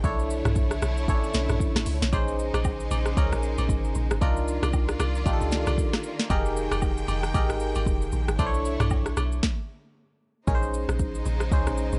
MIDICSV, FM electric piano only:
0, 0, Header, 1, 2, 480
1, 0, Start_track
1, 0, Tempo, 521739
1, 37, Time_signature, 4, 2, 24, 8
1, 11030, End_track
2, 0, Start_track
2, 0, Title_t, "FM electric piano"
2, 0, Program_c, 0, 5
2, 0, Control_c, 0, 64, 127
2, 34, Note_on_c, 0, 62, 87
2, 38, Note_on_c, 0, 64, 82
2, 42, Note_on_c, 0, 69, 80
2, 46, Note_on_c, 0, 73, 98
2, 47, Control_c, 0, 64, 0
2, 199, Control_c, 0, 64, 127
2, 811, Note_off_c, 0, 62, 0
2, 813, Note_off_c, 0, 64, 0
2, 815, Note_off_c, 0, 69, 0
2, 817, Note_off_c, 0, 73, 0
2, 995, Note_on_c, 0, 61, 71
2, 999, Note_on_c, 0, 64, 79
2, 1004, Note_on_c, 0, 69, 80
2, 1008, Note_on_c, 0, 73, 98
2, 1053, Note_on_c, 0, 62, 82
2, 1063, Note_off_c, 0, 61, 0
2, 1773, Note_off_c, 0, 64, 0
2, 1776, Note_off_c, 0, 69, 0
2, 1778, Note_off_c, 0, 73, 0
2, 1800, Note_off_c, 0, 62, 0
2, 1954, Note_on_c, 0, 61, 88
2, 1959, Note_on_c, 0, 63, 81
2, 1962, Note_on_c, 0, 68, 77
2, 1966, Note_on_c, 0, 72, 97
2, 1968, Control_c, 0, 64, 0
2, 2117, Control_c, 0, 64, 127
2, 2731, Note_off_c, 0, 61, 0
2, 2733, Note_off_c, 0, 63, 0
2, 2735, Note_off_c, 0, 68, 0
2, 2737, Note_off_c, 0, 72, 0
2, 2917, Note_on_c, 0, 61, 87
2, 2920, Note_on_c, 0, 63, 77
2, 2924, Note_on_c, 0, 68, 78
2, 2927, Note_on_c, 0, 70, 95
2, 3692, Note_off_c, 0, 61, 0
2, 3694, Note_off_c, 0, 63, 0
2, 3696, Note_off_c, 0, 68, 0
2, 3697, Note_off_c, 0, 70, 0
2, 3874, Note_on_c, 0, 62, 88
2, 3878, Note_on_c, 0, 63, 83
2, 3882, Note_on_c, 0, 65, 85
2, 3886, Note_on_c, 0, 70, 99
2, 3890, Control_c, 0, 64, 0
2, 4056, Control_c, 0, 64, 127
2, 4651, Note_off_c, 0, 62, 0
2, 4653, Note_off_c, 0, 63, 0
2, 4655, Note_off_c, 0, 65, 0
2, 4657, Note_off_c, 0, 70, 0
2, 4835, Note_on_c, 0, 62, 85
2, 4839, Note_on_c, 0, 63, 78
2, 4843, Note_on_c, 0, 65, 77
2, 4846, Note_on_c, 0, 67, 75
2, 4905, Note_on_c, 0, 69, 93
2, 4908, Note_off_c, 0, 67, 0
2, 5612, Note_off_c, 0, 62, 0
2, 5614, Note_off_c, 0, 63, 0
2, 5615, Note_off_c, 0, 65, 0
2, 5647, Note_off_c, 0, 69, 0
2, 5794, Note_on_c, 0, 63, 93
2, 5798, Note_on_c, 0, 67, 82
2, 5802, Note_on_c, 0, 68, 83
2, 5806, Note_on_c, 0, 70, 100
2, 5810, Control_c, 0, 64, 0
2, 5972, Control_c, 0, 64, 127
2, 6571, Note_off_c, 0, 63, 0
2, 6573, Note_off_c, 0, 67, 0
2, 6575, Note_off_c, 0, 68, 0
2, 6577, Note_off_c, 0, 70, 0
2, 6755, Note_on_c, 0, 63, 89
2, 6759, Note_on_c, 0, 67, 83
2, 6762, Note_on_c, 0, 68, 75
2, 6767, Note_on_c, 0, 70, 94
2, 7531, Note_off_c, 0, 63, 0
2, 7533, Note_off_c, 0, 67, 0
2, 7535, Note_off_c, 0, 68, 0
2, 7537, Note_off_c, 0, 70, 0
2, 7716, Note_on_c, 0, 62, 91
2, 7721, Note_on_c, 0, 64, 80
2, 7724, Note_on_c, 0, 69, 84
2, 7728, Control_c, 0, 64, 0
2, 7730, Note_on_c, 0, 72, 80
2, 7787, Note_on_c, 0, 73, 97
2, 7790, Note_off_c, 0, 72, 0
2, 7877, Control_c, 0, 64, 127
2, 8492, Note_off_c, 0, 62, 0
2, 8494, Note_off_c, 0, 64, 0
2, 8496, Note_off_c, 0, 69, 0
2, 8528, Note_off_c, 0, 73, 0
2, 8689, Control_c, 0, 64, 0
2, 9634, Note_on_c, 0, 61, 88
2, 9638, Note_on_c, 0, 63, 80
2, 9642, Note_on_c, 0, 68, 80
2, 9647, Note_on_c, 0, 70, 78
2, 9704, Note_on_c, 0, 72, 99
2, 9708, Note_off_c, 0, 70, 0
2, 9822, Control_c, 0, 64, 127
2, 10411, Note_off_c, 0, 61, 0
2, 10413, Note_off_c, 0, 63, 0
2, 10415, Note_off_c, 0, 68, 0
2, 10446, Note_off_c, 0, 72, 0
2, 10598, Note_on_c, 0, 61, 85
2, 10603, Note_on_c, 0, 63, 75
2, 10607, Note_on_c, 0, 68, 77
2, 10611, Note_on_c, 0, 72, 92
2, 10844, Note_off_c, 0, 72, 0
2, 11030, Note_off_c, 0, 61, 0
2, 11030, Note_off_c, 0, 63, 0
2, 11030, Note_off_c, 0, 68, 0
2, 11030, End_track
0, 0, End_of_file